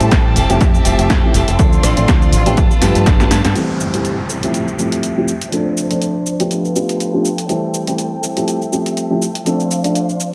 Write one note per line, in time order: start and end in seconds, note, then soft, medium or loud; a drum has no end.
0.00 0.08 A2 medium
0.00 0.21 G3 medium
0.00 0.21 A3 medium
0.00 0.11 C4 medium
0.00 0.21 C4 medium
0.00 0.11 E4 medium
0.00 0.21 E4 medium
0.00 1.57 G4 medium
0.00 0.12 A4 medium
0.00 0.21 A4 medium
0.00 0.35 C5 medium
0.00 1.56 A5 medium
0.00 closed hi-hat medium
0.00 shaker soft
0.11 0.37 A1 medium
0.11 0.35 G3 medium
0.11 0.35 C4 medium
0.11 0.36 E4 medium
0.11 0.36 A4 loud
0.11 kick loud
0.11 snare loud
0.11 closed hi-hat medium
0.11 shaker soft
0.36 0.46 F1 loud
0.36 0.74 G3 medium
0.36 0.75 C4 medium
0.36 0.74 E4 medium
0.36 0.72 A4 loud
0.36 1.58 E5 medium
0.36 open hi-hat medium
0.36 shaker medium
0.49 0.58 F1 loud
0.49 0.70 F3 medium
0.49 0.70 A3 medium
0.49 0.70 C4 medium
0.49 0.71 E4 medium
0.49 0.71 G4 loud
0.49 closed hi-hat medium
0.49 shaker soft
0.61 0.79 F2 loud
0.61 kick loud
0.61 snare medium
0.61 closed hi-hat medium
0.61 shaker soft
0.74 0.84 C4 medium
0.74 0.85 E4 medium
0.74 0.85 A4 medium
0.74 shaker soft
0.85 0.95 F1 loud
0.85 1.20 F3 medium
0.85 1.08 G3 medium
0.85 1.20 A3 medium
0.85 1.20 C4 medium
0.85 1.09 C4 medium
0.85 1.20 E4 medium
0.85 1.09 E4 medium
0.85 1.21 G4 loud
0.85 1.10 A4 medium
0.85 open hi-hat loud
0.85 shaker medium
0.99 1.07 F1 medium
0.99 closed hi-hat medium
0.99 shaker soft
1.09 1.32 G3 medium
1.09 1.33 C4 loud
1.09 1.34 E4 medium
1.09 1.35 A4 loud
1.09 kick loud
1.09 snare loud
1.09 closed hi-hat medium
1.09 shaker soft
1.23 1.35 F3 medium
1.23 1.35 A3 medium
1.23 1.35 C4 medium
1.23 1.36 E4 medium
1.23 1.36 G4 loud
1.34 1.44 F1 loud
1.34 1.48 G3 medium
1.34 1.48 C4 medium
1.34 1.48 E4 medium
1.34 1.46 A4 medium
1.34 open hi-hat medium
1.34 shaker medium
1.47 1.56 F1 medium
1.47 1.58 C4 soft
1.47 1.59 E4 medium
1.47 1.59 A4 medium
1.47 closed hi-hat medium
1.47 shaker soft
1.59 1.78 D2 loud
1.59 1.82 F3 medium
1.59 1.94 F3 medium
1.59 1.94 A3 medium
1.59 1.94 C4 medium
1.59 1.83 C4 medium
1.59 1.94 D4 medium
1.59 1.83 D4 medium
1.59 3.54 F4 medium
1.59 1.94 A4 loud
1.59 1.84 A4 medium
1.59 2.56 D5 medium
1.59 2.56 C6 medium
1.59 kick loud
1.59 closed hi-hat medium
1.59 shaker soft
1.73 shaker soft
1.83 1.93 A1 medium
1.83 2.06 F3 medium
1.83 2.07 C4 medium
1.83 2.08 D4 medium
1.83 2.08 A4 medium
1.83 cross-stick medium
1.83 open hi-hat loud
1.83 shaker medium
1.97 2.05 A1 medium
1.97 2.18 F3 medium
1.97 2.18 A3 medium
1.97 2.18 C4 medium
1.97 2.18 D4 medium
1.97 2.18 A4 medium
1.97 closed hi-hat medium
1.97 shaker soft
2.08 2.46 F3 medium
2.08 2.46 C4 medium
2.08 2.46 D4 loud
2.08 2.45 A4 medium
2.08 kick loud
2.08 snare loud
2.08 closed hi-hat medium
2.08 shaker soft
2.22 shaker soft
2.33 2.43 A1 loud
2.33 open hi-hat medium
2.33 shaker medium
2.46 2.59 A1 loud
2.46 2.67 F3 medium
2.46 2.67 A3 medium
2.46 2.67 B3 medium
2.46 2.57 C4 medium
2.46 2.67 D4 medium
2.46 2.57 D4 medium
2.46 2.67 G4 loud
2.46 2.57 A4 medium
2.46 closed hi-hat medium
2.46 shaker soft
2.57 2.67 G1 medium
2.57 2.71 F3 medium
2.57 2.71 B3 medium
2.57 2.71 D4 medium
2.57 2.69 A4 medium
2.57 3.55 B4 medium
2.57 3.55 A5 medium
2.57 kick loud
2.57 closed hi-hat medium
2.57 shaker soft
2.71 2.81 B3 medium
2.71 2.82 D4 medium
2.71 2.82 A4 medium
2.71 shaker soft
2.81 2.92 G2 medium
2.81 3.05 F3 medium
2.81 3.17 F3 medium
2.81 3.17 A3 medium
2.81 3.17 B3 medium
2.81 3.06 B3 medium
2.81 3.17 D4 medium
2.81 3.06 D4 medium
2.81 3.17 G4 loud
2.81 3.07 A4 medium
2.81 snare medium
2.81 open hi-hat loud
2.81 shaker medium
2.95 3.04 G2 medium
2.95 closed hi-hat medium
2.95 shaker soft
3.06 3.25 G1 medium
3.06 3.29 F3 medium
3.06 3.30 B3 loud
3.06 3.31 D4 loud
3.06 3.32 A4 loud
3.06 kick loud
3.06 snare medium
3.06 closed hi-hat medium
3.06 shaker soft
3.20 3.32 F3 medium
3.20 3.32 A3 medium
3.20 3.32 B3 medium
3.20 3.32 D4 medium
3.20 3.33 G4 loud
3.20 snare medium
3.20 shaker soft
3.31 3.41 G2 medium
3.31 3.45 F3 medium
3.31 3.45 B3 medium
3.31 3.44 D4 medium
3.31 3.43 A4 medium
3.31 snare loud
3.31 open hi-hat medium
3.31 shaker medium
3.44 3.53 G2 loud
3.44 3.56 B3 soft
3.44 3.56 D4 medium
3.44 3.56 A4 medium
3.44 snare medium
3.44 closed hi-hat medium
3.44 shaker soft
3.55 3.91 E3 medium
3.55 4.29 G3 medium
3.55 3.91 G3 medium
3.55 3.91 A3 medium
3.55 4.31 C4 medium
3.55 3.91 C4 medium
3.55 4.29 E4 medium
3.55 5.50 G4 medium
3.55 3.91 G4 medium
3.55 4.28 A4 medium
3.55 4.29 C5 medium
3.55 5.51 A5 medium
3.55 closed hi-hat soft
3.55 downlifter medium
3.55 shaker soft
3.80 shaker medium
3.94 4.15 E3 medium
3.94 4.15 G3 medium
3.94 4.15 A3 medium
3.94 4.15 C4 medium
3.94 4.15 G4 medium
3.94 closed hi-hat medium
3.94 shaker soft
4.05 closed hi-hat soft
4.05 shaker soft
4.29 5.51 G3 medium
4.29 5.52 C4 medium
4.29 5.53 E4 medium
4.29 5.55 A4 medium
4.29 5.51 E5 medium
4.29 shaker medium
4.43 4.64 F3 medium
4.43 4.64 A3 medium
4.43 4.64 C4 medium
4.43 4.64 E4 medium
4.43 4.64 G4 medium
4.43 closed hi-hat medium
4.43 shaker soft
4.54 closed hi-hat soft
4.54 shaker soft
4.68 shaker soft
4.79 5.14 F3 medium
4.79 5.14 A3 medium
4.79 5.14 C4 medium
4.79 5.14 E4 medium
4.79 5.14 G4 medium
4.79 shaker medium
4.92 closed hi-hat medium
4.92 shaker soft
5.03 closed hi-hat medium
5.03 shaker soft
5.17 5.29 F3 medium
5.17 5.29 A3 medium
5.17 5.29 C4 medium
5.17 5.29 E4 medium
5.17 5.29 G4 medium
5.28 shaker medium
5.41 closed hi-hat medium
5.41 shaker soft
5.51 6.48 F3 medium
5.51 5.87 F3 medium
5.51 5.88 A3 medium
5.51 5.88 C4 medium
5.51 6.51 C4 medium
5.51 6.50 D4 medium
5.51 5.88 D4 medium
5.51 6.51 D4 medium
5.51 5.88 A4 medium
5.51 6.53 A4 medium
5.51 6.50 C5 medium
5.51 closed hi-hat soft
5.51 shaker soft
5.77 shaker medium
5.90 6.11 F3 medium
5.90 6.11 A3 medium
5.90 6.11 C4 medium
5.90 6.12 D4 medium
5.90 6.12 A4 medium
5.90 closed hi-hat medium
5.90 shaker soft
6.02 closed hi-hat soft
6.02 shaker soft
6.26 shaker medium
6.39 6.60 F3 medium
6.39 6.61 A3 medium
6.39 6.61 B3 medium
6.39 6.61 D4 medium
6.39 6.61 G4 loud
6.39 closed hi-hat medium
6.39 shaker soft
6.50 7.48 F3 medium
6.50 7.49 B3 medium
6.50 7.49 D4 medium
6.50 7.48 F4 medium
6.50 9.43 A4 medium
6.50 7.50 A4 medium
6.50 7.48 B4 medium
6.50 9.43 G5 medium
6.50 closed hi-hat soft
6.50 shaker soft
6.65 shaker soft
6.75 7.10 F3 medium
6.75 7.10 A3 medium
6.75 7.10 B3 medium
6.75 7.11 D4 medium
6.75 7.11 G4 medium
6.75 shaker medium
6.89 closed hi-hat medium
6.89 shaker soft
7.00 closed hi-hat soft
7.00 shaker soft
7.13 7.25 F3 medium
7.13 7.26 A3 medium
7.13 7.26 B3 medium
7.13 7.26 D4 medium
7.13 7.26 G4 medium
7.25 shaker medium
7.38 closed hi-hat medium
7.38 shaker soft
7.49 7.84 E3 medium
7.49 8.23 G3 medium
7.49 7.84 G3 medium
7.49 7.84 A3 medium
7.49 8.22 C4 medium
7.49 8.24 C4 medium
7.49 7.84 C4 medium
7.49 8.22 E4 medium
7.49 7.85 G4 loud
7.49 8.21 A4 medium
7.49 closed hi-hat soft
7.49 shaker soft
7.74 shaker medium
7.87 8.08 E3 medium
7.87 8.08 G3 medium
7.87 8.08 A3 medium
7.87 8.08 C4 medium
7.87 8.08 G4 medium
7.87 closed hi-hat medium
7.87 shaker soft
7.98 closed hi-hat soft
7.98 shaker soft
8.22 9.44 G3 medium
8.22 9.45 C4 medium
8.22 9.46 E4 medium
8.22 9.48 A4 medium
8.22 9.45 E5 medium
8.22 shaker medium
8.36 8.57 F3 medium
8.36 8.57 A3 medium
8.36 8.57 C4 medium
8.36 8.57 E4 medium
8.36 8.58 G4 loud
8.36 closed hi-hat medium
8.36 shaker soft
8.48 closed hi-hat soft
8.48 shaker soft
8.62 shaker soft
8.72 9.07 F3 medium
8.72 9.07 A3 medium
8.72 9.07 C4 medium
8.72 9.07 E4 medium
8.72 9.07 G4 medium
8.72 shaker medium
8.86 closed hi-hat medium
8.86 shaker soft
8.97 closed hi-hat soft
8.97 shaker soft
9.10 9.22 F3 medium
9.10 9.22 A3 medium
9.10 9.22 C4 medium
9.10 9.22 E4 medium
9.10 9.23 G4 medium
9.22 shaker medium
9.35 closed hi-hat medium
9.35 shaker soft
9.45 10.34 F3 medium
9.45 9.81 F3 medium
9.45 9.81 A3 medium
9.45 9.81 C4 medium
9.45 10.34 C4 medium
9.45 10.34 D4 medium
9.45 9.81 D4 medium
9.45 10.34 D4 medium
9.45 9.81 A4 medium
9.45 10.34 A4 medium
9.45 10.34 C5 medium
9.45 10.34 F5 medium
9.45 closed hi-hat soft
9.45 shaker soft
9.60 shaker soft
9.71 shaker medium
9.84 10.05 F3 medium
9.84 10.05 A3 medium
9.84 10.05 C4 medium
9.84 10.05 D4 medium
9.84 10.05 A4 medium
9.84 closed hi-hat medium
9.84 shaker soft
9.95 closed hi-hat soft
9.95 shaker soft
10.09 shaker soft
10.20 shaker medium